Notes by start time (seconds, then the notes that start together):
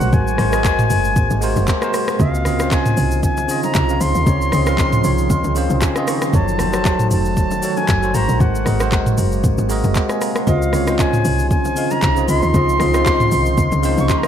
Already playing: C3 G#3 A#3 F#4 A#4 C5 F#5
0.01 A#1, shaker
0.13 G#1 G#5, kick, low conga, shaker
0.28 shaker
0.38 G#1 G#3 F#4 A#4 C5, cross-stick, open hi-hat, low bongo, low conga, shaker
0.52 G#3 F#4 A#4 D#5, cross-stick, shaker
0.64 kick, clap, high bongo, shaker
0.79 mid tom, shaker
0.90 F#1, open hi-hat, shaker
1.04 shaker
1.16 G#1, kick, low conga, shaker
1.30 G#1, low bongo, shaker
1.41 G#3 F#4 A#4 C5, open hi-hat, shaker
1.56 F#1, low bongo, shaker
1.67 kick, clap, high bongo, shaker
1.81 G#3 F#4 A#4 C5, cross-stick, shaker
1.94 cross-stick, open hi-hat, shaker
2.08 cross-stick, shaker
2.19 C#2 C#3 D#3 F3 C4 D#4 F4 C5 D#5 F5, kick, low conga, shaker
2.35 shaker
2.45 C#3 C4 F4 D#5, cross-stick, open hi-hat, low conga, shaker
2.59 C4 C#4 F4 C5, cross-stick, shaker
2.71 G#5, kick, clap, high bongo, shaker
2.86 mid tom, shaker
2.97 C2, open hi-hat, shaker
3.11 shaker
3.23 G#5, kick, low conga, shaker
3.37 low bongo, shaker
3.48 C#3 C4 F4 D#5, open hi-hat, shaker
3.63 A#5, low bongo, shaker
3.74 C2, kick, clap, high bongo, shaker
3.88 C#3 C4 F4 F5, shaker
4.01 C#2 C6, open hi-hat, shaker
4.15 D#2, shaker
4.26 C#2 C#3 C4 F4 C#5, kick, low conga, shaker
4.42 shaker
4.51 C#2 C#3 C4 F4 D#5, cross-stick, open hi-hat, low conga, shaker
4.66 C#3 C4 F4 F5, cross-stick, shaker
4.78 kick, clap, high bongo, shaker
4.93 mid tom, shaker
5.04 C2 C#5, open hi-hat, shaker
5.18 shaker
5.30 C#2 F5, kick, low conga, shaker
5.44 C#2, low bongo, shaker
5.55 C#3 C4 F4 C5, open hi-hat, shaker
5.70 C2, low bongo, shaker
5.81 G#5, kick, clap, high bongo, shaker
5.95 C#3 C4 F4 D#5, cross-stick, shaker
6.08 C#6, cross-stick, open hi-hat, shaker
6.22 cross-stick, shaker
6.33 F#1 F#3 A3 F#4 A4 C#5 A5, kick, low conga, shaker
6.48 shaker
6.58 F#3 F#4 A4 C5, cross-stick, open hi-hat, low conga, shaker
6.72 F#3 F#4 A4 C5, cross-stick, shaker
6.85 kick, clap, high bongo, shaker
6.99 mid tom, shaker
7.11 F1 A5, open hi-hat, shaker
7.25 shaker
7.37 kick, low conga, shaker
7.51 low bongo, shaker
7.62 F#3 F#4 A4 C#5, open hi-hat, shaker
7.77 G#5, low bongo, shaker
7.88 F#1, kick, clap, high bongo, shaker
8.02 F#3 F#4 A4 C5, shaker
8.14 G#1 C3 G#3 A#3 F#4 A#4 C5 A#5, open hi-hat, shaker
8.29 A#1, shaker
8.40 G#1 F#5, kick, low conga, shaker
8.55 shaker
8.65 G#1 G#3 F#4 A#4 D#5, cross-stick, open hi-hat, low conga, shaker
8.79 G#3 F#4 A#4 C5, cross-stick, low bongo, shaker
8.92 kick, clap, high bongo, shaker
9.06 mid tom, shaker
9.18 F#1, open hi-hat, shaker
9.32 shaker
9.44 G#1, kick, low conga, shaker
9.58 G#1, high bongo, low bongo, shaker
9.69 G#3 F#4 A#4 D#5, open hi-hat, shaker
9.84 F#1, low bongo, shaker
9.95 C5 F#5, kick, clap, high bongo, shaker
10.09 D#5 G#5, cross-stick, shaker
10.21 F5 A#5, cross-stick, open hi-hat, shaker
10.36 F#5 C6, cross-stick, shaker
10.46 C#2 C#3 D#3 F3 C4 D#4 F4 C5 D#5 F5, kick, low conga, shaker
10.62 shaker
10.72 C#3 C4 F4 C#5, cross-stick, open hi-hat, low conga, shaker
10.86 C4 C#4 D#4 F4 C5 D#5, cross-stick, shaker
10.94 F4
10.99 G#5, kick, clap, high bongo, shaker
11.13 mid tom, shaker
11.25 C2, open hi-hat, shaker
11.39 shaker
11.51 G#5, kick, low conga, shaker
11.65 low bongo, shaker
11.76 C#3 C4 F4 C5 D#5 F5, open hi-hat, shaker
11.91 A#5, low bongo, shaker
12.02 C2, kick, clap, high bongo, shaker
12.16 C#3 C4 F4 D#5, shaker
12.28 C#2 F4 C5 D#5 C6, open hi-hat, shaker
12.42 D#2, shaker
12.53 C#2 C#3 A#3 C4 F4 C5 D#5, kick, low conga, shaker
12.69 shaker
12.79 C#2 C#3 C4 F4 D#5, cross-stick, open hi-hat, low conga, shaker
12.93 C#3 C4 F4 C5 D#5, cross-stick, shaker
13.06 kick, clap, high bongo, shaker
13.20 mid tom, shaker
13.32 C2, open hi-hat, shaker
13.46 shaker
13.58 C#2, kick, low conga, shaker
13.72 C#2, low bongo, shaker
13.82 C#3 C4 F4 C5 D#5, open hi-hat, shaker
13.98 C2 C#6, low bongo, shaker
14.09 C6, kick, clap, high bongo, shaker
14.18 A#5
14.23 C#3 C4 F4, cross-stick, shaker